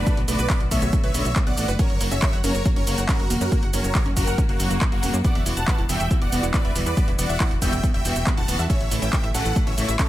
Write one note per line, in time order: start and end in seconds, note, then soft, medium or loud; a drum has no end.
0.00 0.20 D4 medium
0.00 0.20 B4 loud
0.06 0.22 D3 medium
0.06 0.17 A3 medium
0.06 0.22 A3 medium
0.06 0.22 B3 medium
0.06 0.22 F#4 medium
0.06 kick loud
0.06 closed hi-hat medium
0.06 shaker soft
0.17 0.26 B1 medium
0.17 0.21 B3 medium
0.17 closed hi-hat soft
0.28 0.37 B1 loud
0.28 0.43 D3 medium
0.28 0.43 A3 medium
0.28 0.32 A3 medium
0.28 0.43 B3 medium
0.28 0.43 F#4 medium
0.28 0.61 B4 medium
0.28 0.61 D5 loud
0.28 open hi-hat loud
0.28 shaker medium
0.39 0.47 B1 medium
0.39 0.46 B4 loud
0.39 closed hi-hat soft
0.39 shaker soft
0.50 0.65 D3 medium
0.50 0.65 A3 medium
0.50 0.65 B3 medium
0.50 0.57 B3 medium
0.50 0.65 F#4 medium
0.50 kick loud
0.50 clap loud
0.50 closed hi-hat medium
0.50 shaker soft
0.60 0.69 B1 medium
0.60 closed hi-hat soft
0.71 0.80 B1 loud
0.71 0.86 D3 medium
0.71 0.86 A3 medium
0.71 0.82 A3 medium
0.71 0.86 B3 medium
0.71 0.86 F#4 medium
0.71 0.96 C#5 medium
0.71 0.96 E5 loud
0.71 kick medium
0.71 open hi-hat loud
0.71 shaker medium
0.82 0.91 B1 medium
0.82 0.86 B3 medium
0.82 closed hi-hat soft
0.82 shaker soft
0.93 1.08 D3 medium
0.93 1.08 A3 medium
0.93 0.97 A3 medium
0.93 1.08 B3 medium
0.93 1.08 F#4 medium
0.93 kick loud
0.93 closed hi-hat medium
0.93 shaker soft
1.04 1.12 B1 medium
1.04 1.11 B4 loud
1.04 1.36 C#5 medium
1.04 1.36 E5 loud
1.04 closed hi-hat soft
1.14 1.23 B1 loud
1.14 1.29 D3 medium
1.14 1.29 A3 medium
1.14 1.29 B3 medium
1.14 1.21 B3 medium
1.14 1.29 F#4 medium
1.14 open hi-hat loud
1.14 shaker medium
1.25 1.34 B1 medium
1.25 closed hi-hat soft
1.25 shaker soft
1.36 1.51 D3 medium
1.36 1.51 A3 medium
1.36 1.46 A3 medium
1.36 1.51 B3 medium
1.36 1.51 F#4 medium
1.36 kick loud
1.36 clap loud
1.36 closed hi-hat medium
1.36 shaker soft
1.47 1.55 B1 medium
1.47 1.51 B3 medium
1.47 1.71 D5 medium
1.47 1.71 F#5 loud
1.47 closed hi-hat soft
1.57 1.66 A1 medium
1.57 1.73 D3 medium
1.57 1.62 A3 medium
1.57 1.73 A3 medium
1.57 1.73 B3 medium
1.57 1.73 F#4 medium
1.57 open hi-hat loud
1.57 shaker medium
1.68 1.77 F#1 medium
1.68 1.75 B4 loud
1.68 closed hi-hat soft
1.68 shaker soft
1.79 1.94 C#3 medium
1.79 1.94 F#3 medium
1.79 1.94 A#3 medium
1.79 1.86 C#4 medium
1.79 1.94 F#4 medium
1.79 2.03 A#4 medium
1.79 2.03 C#5 loud
1.79 kick loud
1.79 closed hi-hat medium
1.79 shaker soft
1.90 1.98 F#1 medium
1.90 closed hi-hat soft
2.01 2.09 F#1 loud
2.01 2.16 C#3 medium
2.01 2.16 F#3 medium
2.01 2.11 A#3 medium
2.01 2.16 A#3 medium
2.01 2.16 F#4 medium
2.01 open hi-hat loud
2.01 shaker medium
2.11 2.20 F#1 medium
2.11 2.16 C#4 medium
2.11 2.36 C#5 medium
2.11 2.36 E5 loud
2.11 closed hi-hat soft
2.11 shaker soft
2.22 2.37 C#3 medium
2.22 2.37 F#3 loud
2.22 2.37 A#3 medium
2.22 2.27 A#3 medium
2.22 2.37 F#4 loud
2.22 kick loud
2.22 clap loud
2.22 closed hi-hat medium
2.22 shaker soft
2.33 2.42 F#1 medium
2.33 2.40 F#5 loud
2.33 closed hi-hat soft
2.44 2.52 F#1 loud
2.44 2.59 C#3 medium
2.44 2.59 F#3 medium
2.44 2.59 A#3 medium
2.44 2.51 C#4 medium
2.44 2.59 F#4 medium
2.44 2.68 A#4 medium
2.44 2.68 C#5 loud
2.44 open hi-hat loud
2.44 shaker medium
2.55 2.63 F#1 medium
2.55 closed hi-hat soft
2.55 shaker soft
2.65 2.81 C#3 medium
2.65 2.81 F#3 medium
2.65 2.76 A#3 medium
2.65 2.81 A#3 medium
2.65 2.81 F#4 medium
2.65 kick loud
2.65 closed hi-hat medium
2.65 shaker soft
2.76 2.85 F#1 medium
2.76 2.80 C#4 medium
2.76 3.01 A#4 medium
2.76 3.01 C#5 loud
2.76 closed hi-hat soft
2.87 2.96 F#1 loud
2.87 3.02 C#3 medium
2.87 3.02 F#3 loud
2.87 3.02 A#3 loud
2.87 2.91 A#3 medium
2.87 3.02 F#4 medium
2.87 open hi-hat loud
2.87 shaker medium
2.98 3.06 F#1 medium
2.98 3.05 F#5 loud
2.98 closed hi-hat soft
2.98 shaker soft
3.08 3.24 C#3 medium
3.08 3.24 F#3 medium
3.08 3.24 A#3 medium
3.08 3.16 C#4 medium
3.08 3.24 F#4 medium
3.08 3.33 F#4 medium
3.08 3.33 A#4 loud
3.08 kick loud
3.08 clap loud
3.08 closed hi-hat medium
3.08 shaker soft
3.20 3.28 F#1 medium
3.20 closed hi-hat soft
3.30 3.39 E1 loud
3.30 3.45 C#3 medium
3.30 3.45 F#3 medium
3.30 3.45 A#3 medium
3.30 3.40 A#3 medium
3.30 3.45 F#4 medium
3.30 open hi-hat loud
3.30 shaker medium
3.41 3.50 F#2 medium
3.41 3.45 C#4 medium
3.41 3.65 F#4 medium
3.41 3.65 A#4 loud
3.41 closed hi-hat soft
3.41 shaker soft
3.52 3.67 C#3 medium
3.52 3.67 F#3 medium
3.52 3.56 A#3 medium
3.52 3.67 A#3 medium
3.52 3.67 F#4 medium
3.52 kick loud
3.52 closed hi-hat medium
3.52 shaker soft
3.63 3.71 F#1 medium
3.63 3.70 F#5 loud
3.63 closed hi-hat soft
3.73 3.82 F#1 loud
3.73 3.89 C#3 medium
3.73 3.89 F#3 medium
3.73 3.89 A#3 medium
3.73 3.80 C#4 medium
3.73 3.89 F#4 medium
3.73 4.06 A#4 medium
3.73 4.06 C#5 medium
3.73 open hi-hat loud
3.73 shaker medium
3.84 3.93 F#1 medium
3.84 closed hi-hat soft
3.84 shaker soft
3.95 4.10 C#3 medium
3.95 4.10 F#3 medium
3.95 4.05 A#3 medium
3.95 4.10 A#3 medium
3.95 4.10 F#4 loud
3.95 kick loud
3.95 clap loud
3.95 closed hi-hat medium
3.95 shaker soft
4.06 4.14 F#1 medium
4.06 4.10 C#4 medium
4.06 closed hi-hat soft
4.17 4.25 F#1 loud
4.17 4.32 C#3 medium
4.17 4.32 F#3 medium
4.17 4.21 A#3 medium
4.17 4.32 A#3 medium
4.17 4.41 F#4 medium
4.17 4.32 F#4 medium
4.17 4.41 A#4 loud
4.17 kick medium
4.17 open hi-hat loud
4.17 shaker medium
4.27 4.36 F#1 loud
4.27 4.34 F#5 loud
4.27 closed hi-hat soft
4.27 shaker soft
4.38 4.53 C#3 medium
4.38 4.53 F#3 medium
4.38 4.53 A#3 medium
4.38 4.45 C#4 medium
4.38 4.53 F#4 medium
4.38 kick loud
4.38 closed hi-hat medium
4.38 shaker soft
4.49 4.57 F#1 medium
4.49 4.81 A#3 medium
4.49 4.81 F#4 loud
4.49 closed hi-hat soft
4.60 4.68 F#1 loud
4.60 4.75 C#3 medium
4.60 4.75 F#3 medium
4.60 4.75 A#3 medium
4.60 4.75 F#4 medium
4.60 4.70 F#5 medium
4.60 open hi-hat loud
4.60 shaker medium
4.70 4.79 F#1 medium
4.70 4.78 A#3 medium
4.70 closed hi-hat soft
4.70 shaker soft
4.81 4.96 C#3 medium
4.81 4.97 F#3 medium
4.81 4.86 A#3 medium
4.81 4.96 A#3 medium
4.81 4.96 F#4 medium
4.81 kick loud
4.81 clap loud
4.81 closed hi-hat medium
4.81 shaker soft
4.92 5.01 F#1 medium
4.92 4.99 A#3 medium
4.92 5.16 A#3 medium
4.92 5.16 F#4 loud
4.92 closed hi-hat soft
5.03 5.11 E1 medium
5.03 5.18 C#3 medium
5.03 5.18 F#3 medium
5.03 5.18 A#3 medium
5.03 5.10 C#4 medium
5.03 5.18 F#4 medium
5.03 open hi-hat loud
5.03 shaker medium
5.14 5.22 F#2 medium
5.14 5.18 A#3 medium
5.14 closed hi-hat soft
5.14 shaker soft
5.24 5.40 E3 medium
5.24 5.40 G3 medium
5.24 5.29 B3 medium
5.24 5.40 B3 medium
5.24 5.40 F#4 medium
5.24 5.49 D5 medium
5.24 5.49 F#5 loud
5.24 kick loud
5.24 closed hi-hat medium
5.24 shaker soft
5.35 5.44 E1 medium
5.35 5.42 E5 loud
5.35 closed hi-hat soft
5.46 5.55 E1 loud
5.46 5.61 E3 medium
5.46 5.61 G3 medium
5.46 5.61 B3 medium
5.46 5.53 E4 medium
5.46 5.61 F#4 medium
5.46 open hi-hat loud
5.46 shaker medium
5.57 5.65 E1 medium
5.57 5.81 F#5 medium
5.57 5.81 A5 loud
5.57 closed hi-hat soft
5.57 shaker soft
5.68 5.83 E3 medium
5.68 5.83 G3 medium
5.68 5.78 B3 medium
5.68 5.83 B3 medium
5.68 5.83 F#4 medium
5.68 kick loud
5.68 clap loud
5.68 closed hi-hat medium
5.68 shaker soft
5.78 5.87 E1 medium
5.78 5.83 E4 medium
5.78 closed hi-hat soft
5.89 5.98 E1 loud
5.89 6.04 E3 medium
5.89 6.04 G3 medium
5.89 5.93 B3 medium
5.89 6.04 B3 medium
5.89 6.04 F#4 medium
5.89 6.14 E5 medium
5.89 6.14 G5 loud
5.89 open hi-hat loud
5.89 shaker medium
6.00 6.09 E1 medium
6.00 6.07 E5 loud
6.00 closed hi-hat soft
6.00 shaker soft
6.11 6.26 E3 medium
6.11 6.26 G3 medium
6.11 6.26 B3 medium
6.11 6.18 E4 medium
6.11 6.26 F#4 medium
6.11 kick loud
6.11 closed hi-hat medium
6.11 shaker soft
6.22 6.30 E1 medium
6.22 6.46 D5 medium
6.22 6.46 F#5 loud
6.22 closed hi-hat soft
6.32 6.41 E1 loud
6.32 6.48 E3 medium
6.32 6.48 G3 medium
6.32 6.43 B3 medium
6.32 6.48 B3 medium
6.32 6.48 F#4 medium
6.32 open hi-hat loud
6.32 shaker medium
6.43 6.52 E1 medium
6.43 6.47 E4 medium
6.43 closed hi-hat soft
6.43 shaker soft
6.54 6.69 E3 medium
6.54 6.69 G3 medium
6.54 6.58 B3 medium
6.54 6.69 B3 medium
6.54 6.69 F#4 medium
6.54 6.78 B4 medium
6.54 6.78 D5 medium
6.54 kick loud
6.54 clap loud
6.54 closed hi-hat medium
6.54 shaker soft
6.65 6.73 E1 medium
6.65 6.72 E5 loud
6.65 closed hi-hat soft
6.75 6.84 D1 medium
6.75 6.91 E3 medium
6.75 6.91 G3 medium
6.75 6.91 B3 medium
6.75 6.83 E4 medium
6.75 6.91 F#4 medium
6.75 open hi-hat loud
6.75 shaker medium
6.86 6.95 E2 medium
6.86 7.11 B4 medium
6.86 7.11 D5 loud
6.86 closed hi-hat soft
6.86 shaker soft
6.97 7.12 E3 medium
6.97 7.12 G3 medium
6.97 7.12 B3 medium
6.97 7.07 B3 medium
6.97 7.12 F#4 medium
6.97 kick loud
6.97 closed hi-hat medium
6.97 shaker soft
7.08 7.16 E1 medium
7.08 7.12 E4 medium
7.08 closed hi-hat soft
7.19 7.27 E1 loud
7.19 7.34 E3 medium
7.19 7.34 G3 medium
7.19 7.23 B3 medium
7.19 7.34 B3 medium
7.19 7.34 F#4 medium
7.19 7.51 D5 medium
7.19 7.51 F#5 loud
7.19 open hi-hat loud
7.19 shaker medium
7.29 7.38 E1 medium
7.29 7.37 E5 loud
7.29 closed hi-hat soft
7.29 shaker soft
7.40 7.55 E3 loud
7.40 7.55 G3 medium
7.40 7.55 B3 medium
7.40 7.47 E4 medium
7.40 7.55 F#4 loud
7.40 kick loud
7.40 clap loud
7.40 closed hi-hat medium
7.40 shaker soft
7.51 7.60 E1 medium
7.51 closed hi-hat soft
7.62 7.70 E1 loud
7.62 7.77 E3 medium
7.62 7.77 G3 medium
7.62 7.77 B3 medium
7.62 7.72 B3 medium
7.62 7.77 F#4 medium
7.62 7.86 E5 medium
7.62 7.86 G5 loud
7.62 kick medium
7.62 open hi-hat loud
7.62 shaker medium
7.73 7.81 E1 medium
7.73 7.77 E4 medium
7.73 closed hi-hat soft
7.73 shaker soft
7.83 7.99 E3 medium
7.83 7.99 G3 medium
7.83 7.99 B3 medium
7.83 7.88 B3 medium
7.83 7.99 F#4 medium
7.83 kick loud
7.83 closed hi-hat medium
7.83 shaker soft
7.94 8.03 E1 medium
7.94 8.01 E5 loud
7.94 8.27 E5 medium
7.94 8.27 G5 loud
7.94 closed hi-hat soft
8.05 8.14 E1 loud
8.05 8.20 E3 medium
8.05 8.20 G3 medium
8.05 8.20 B3 medium
8.05 8.12 E4 medium
8.05 8.20 F#4 medium
8.05 open hi-hat loud
8.05 shaker medium
8.16 8.24 E1 medium
8.16 closed hi-hat soft
8.16 shaker soft
8.26 8.42 E3 medium
8.26 8.42 G3 medium
8.26 8.42 B3 medium
8.26 8.37 B3 medium
8.26 8.42 F#4 medium
8.26 kick loud
8.26 clap loud
8.26 closed hi-hat medium
8.26 shaker soft
8.37 8.46 E1 medium
8.37 8.42 E4 medium
8.37 8.62 F#5 medium
8.37 8.62 A5 loud
8.37 closed hi-hat soft
8.48 8.57 D1 loud
8.48 8.63 E3 medium
8.48 8.63 G3 medium
8.48 8.63 B3 medium
8.48 8.52 B3 medium
8.48 8.63 F#4 medium
8.48 open hi-hat loud
8.48 shaker medium
8.59 8.67 E2 medium
8.59 8.66 E5 loud
8.59 closed hi-hat soft
8.59 shaker soft
8.70 8.85 C#3 medium
8.70 8.85 E3 medium
8.70 8.85 A3 medium
8.70 8.77 C#4 medium
8.70 8.85 E4 medium
8.70 8.94 C#5 medium
8.70 8.94 E5 loud
8.70 kick loud
8.70 closed hi-hat medium
8.70 shaker soft
8.81 8.89 A1 medium
8.81 closed hi-hat soft
8.91 9.00 A1 loud
8.91 9.06 C#3 medium
8.91 9.06 E3 medium
8.91 9.02 A3 medium
8.91 9.06 A3 medium
8.91 9.06 E4 medium
8.91 open hi-hat loud
8.91 shaker medium
9.02 9.11 A1 medium
9.02 9.06 C#4 medium
9.02 9.26 E5 medium
9.02 9.26 G5 medium
9.02 closed hi-hat soft
9.02 shaker soft
9.13 9.28 C#3 medium
9.13 9.28 E3 medium
9.13 9.17 A3 medium
9.13 9.28 A3 loud
9.13 9.28 E4 medium
9.13 kick loud
9.13 clap loud
9.13 closed hi-hat medium
9.13 shaker soft
9.24 9.32 A1 medium
9.24 9.31 E5 loud
9.24 closed hi-hat soft
9.34 9.43 A1 loud
9.34 9.50 C#3 medium
9.34 9.50 E3 medium
9.34 9.50 A3 medium
9.34 9.42 C#4 medium
9.34 9.50 E4 medium
9.34 9.59 A4 medium
9.34 9.59 F#5 loud
9.34 open hi-hat loud
9.34 shaker medium
9.45 9.54 A1 medium
9.45 closed hi-hat soft
9.45 shaker soft
9.56 9.71 C#3 medium
9.56 9.71 E3 medium
9.56 9.66 A3 medium
9.56 9.71 A3 medium
9.56 9.71 E4 medium
9.56 kick loud
9.56 closed hi-hat medium
9.56 shaker soft
9.67 9.75 A1 medium
9.67 9.71 C#4 medium
9.67 9.91 C#5 medium
9.67 9.91 E5 loud
9.67 closed hi-hat soft
9.78 9.86 A1 loud
9.78 9.93 C#3 medium
9.78 9.93 E3 medium
9.78 9.93 A3 medium
9.78 9.82 A3 medium
9.78 9.93 E4 medium
9.78 open hi-hat loud
9.78 shaker medium
9.88 9.97 A1 loud
9.88 9.95 E5 loud
9.88 closed hi-hat soft
9.88 shaker soft
9.99 10.09 C#3 medium
9.99 10.09 E3 medium
9.99 10.09 A3 medium
9.99 10.06 C#4 medium
9.99 10.09 E4 medium
9.99 10.09 A4 medium
9.99 10.09 C#5 loud
9.99 kick loud
9.99 clap loud
9.99 closed hi-hat medium
9.99 shaker soft